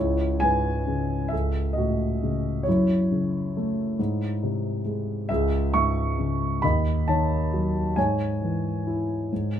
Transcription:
0.00 1.29 C#2 soft
0.00 0.39 E4 soft
0.00 0.43 C#5 medium
0.40 1.30 G#2 soft
0.40 1.29 B4 soft
0.40 1.34 G#5 medium
0.87 1.31 C#3 soft
1.28 2.63 C#2 soft
1.28 1.72 E5 medium
1.33 1.74 A4 soft
1.73 2.64 A2 soft
1.73 2.67 D#5 medium
1.78 2.63 F#4 soft
2.23 2.66 C#3 soft
2.63 3.95 F#2 medium
2.63 4.80 C#5 medium
2.68 4.83 E4 soft
3.11 3.96 C#3 soft
3.57 3.98 A3 soft
3.99 5.26 G#2 soft
4.43 5.27 C3 soft
4.85 5.28 G#3 soft
5.29 6.59 C#2 soft
5.29 5.71 G#4 medium
5.29 5.74 E5 medium
5.74 6.60 G#2 soft
5.74 6.60 E5 medium
5.74 6.65 C#6 medium
6.19 6.62 C#3 soft
6.62 7.93 D#2 medium
6.62 7.05 D#5 medium
6.62 7.04 B5 medium
7.08 7.94 D#3 soft
7.08 7.94 C#5 soft
7.08 7.99 A5 medium
7.53 7.96 F#3 soft
7.96 9.28 G#2 medium
7.96 9.60 C#5 medium
7.96 9.60 G#5 medium
8.42 9.29 E3 soft
8.87 9.30 E4 soft
9.32 9.60 G#2 soft

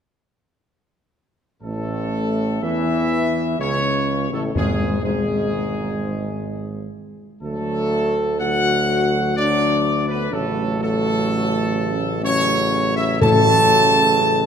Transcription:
1.62 2.59 A1 medium
1.62 2.59 A2 medium
1.62 2.59 A3 medium
1.62 2.59 A4 medium
2.63 3.55 E2 medium
2.63 3.55 E3 medium
2.63 3.59 E4 medium
2.63 3.59 E5 medium
3.59 4.33 C#2 medium
3.59 4.27 C#3 medium
3.59 4.28 C#4 medium
3.59 4.28 C#5 loud
4.31 4.54 A1 medium
4.31 4.54 A2 medium
4.31 4.42 A3 medium
4.31 4.43 A4 medium
4.54 5.00 G#1 medium
4.54 5.96 E2 medium
4.54 5.00 G#2 medium
4.54 5.01 G#3 medium
4.54 5.01 G#4 medium
5.02 6.90 G#1 medium
5.02 6.91 G#2 medium
5.02 6.92 G#3 medium
5.02 6.91 G#4 medium
7.42 10.28 D2 medium
7.42 8.38 D3 medium
7.42 8.38 F#3 medium
7.42 8.37 A3 medium
7.42 8.37 A4 medium
8.40 9.34 D3 medium
8.40 9.34 F#3 medium
8.40 9.34 F#4 medium
8.40 9.33 F#5 loud
9.37 10.28 D3 medium
9.37 10.28 F#3 medium
9.37 10.05 D4 medium
9.37 10.05 D5 loud
10.08 10.20 B3 medium
10.08 10.32 B4 medium
10.32 14.46 A1 medium
10.32 12.22 C#3 medium
10.32 12.19 F#3 medium
10.32 10.76 A3 medium
10.32 10.80 A4 medium
10.80 12.19 A3 medium
10.80 12.20 A4 loud
12.22 13.17 C#3 medium
12.22 13.17 F#3 medium
12.22 12.92 C#4 medium
12.22 12.93 C#5 loud
12.96 13.08 E4 medium
12.96 13.19 E5 loud
13.21 14.46 A2 medium
13.21 14.46 C#3 medium
13.21 14.46 F#3 medium
13.21 14.46 A4 loud
13.21 14.46 A5 loud

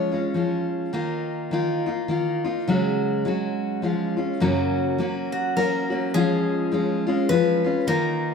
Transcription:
0.00 0.12 F3 soft
0.00 0.12 G#3 soft
0.00 0.12 C#4 soft
0.00 0.10 F4 medium
0.00 0.67 C#5 medium
0.11 0.34 G#3 soft
0.11 0.35 C#4 soft
0.11 0.35 F4 soft
0.34 0.92 F3 soft
0.34 0.93 G#3 soft
0.34 0.94 C#4 soft
0.34 0.93 F4 soft
0.93 1.50 D#3 medium
0.93 1.51 A#3 medium
0.93 1.52 D#4 medium
0.93 1.52 F4 medium
1.51 1.86 D#3 medium
1.51 1.87 A#3 medium
1.51 1.86 D#4 medium
1.51 1.85 F4 medium
1.86 2.08 A#3 soft
1.86 2.08 D#4 soft
1.86 2.10 F4 soft
2.08 2.44 D#3 medium
2.08 2.44 A#3 soft
2.08 2.45 D#4 medium
2.08 2.43 F4 medium
2.44 2.68 A#3 soft
2.44 2.68 D#4 soft
2.44 2.68 F4 soft
2.67 3.26 C#3 medium
2.67 3.24 F#3 medium
2.67 3.25 G#3 medium
2.67 3.26 C#4 medium
2.67 3.26 F#4 medium
3.25 3.82 F#3 medium
3.25 3.82 G#3 medium
3.25 3.83 C#4 medium
3.25 3.85 F#4 medium
3.82 4.18 F3 soft
3.82 4.18 G#3 soft
3.82 4.17 C#4 medium
3.82 4.16 F4 medium
4.17 4.41 G#3 soft
4.17 4.41 C#4 soft
4.17 4.41 F4 soft
4.40 4.99 F#2 medium
4.40 4.99 C#3 medium
4.40 4.97 F#3 medium
4.40 4.98 A#3 medium
4.40 5.00 C#4 medium
4.40 5.00 F#4 medium
4.98 5.55 F#3 medium
4.98 5.56 A#3 medium
4.98 5.57 C#4 medium
4.98 5.58 F#4 medium
5.32 5.55 F#4 medium
5.56 5.91 F#3 medium
5.56 5.91 A#3 medium
5.56 5.90 C#4 medium
5.56 5.89 F#4 medium
5.56 6.11 A#4 medium
5.90 6.14 F#3 soft
5.90 6.14 A#3 soft
5.90 6.14 C#4 soft
5.90 6.14 F#4 soft
6.14 6.71 F3 medium
6.14 6.71 G#3 medium
6.14 6.72 C#4 medium
6.14 6.74 F4 medium
6.14 7.34 G#4 medium
6.72 7.07 F3 medium
6.72 7.07 G#3 medium
6.72 7.07 C#4 medium
6.72 7.05 F4 medium
7.07 7.29 G#3 soft
7.07 7.30 C#4 soft
7.07 7.30 F4 medium
7.29 7.65 F3 medium
7.29 7.65 G#3 medium
7.29 7.65 C#4 medium
7.29 7.63 F4 medium
7.29 7.84 B4 medium
7.64 7.88 G#3 soft
7.64 7.88 C#4 soft
7.64 7.88 F4 soft
7.87 8.34 D#3 medium
7.87 8.34 A#3 medium
7.87 8.34 D#4 medium
7.87 8.34 F4 medium
7.87 8.34 A#4 medium

